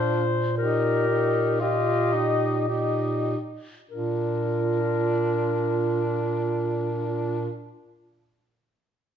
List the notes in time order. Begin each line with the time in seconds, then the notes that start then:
Already playing: A#2 D4 F4 C5
0.57 D#4 G4 A#4
1.07 D#4
1.61 F4 G4 D#5
2.14 D#4
2.68 D#4 G4
3.90 A#2 D4 F4 A#4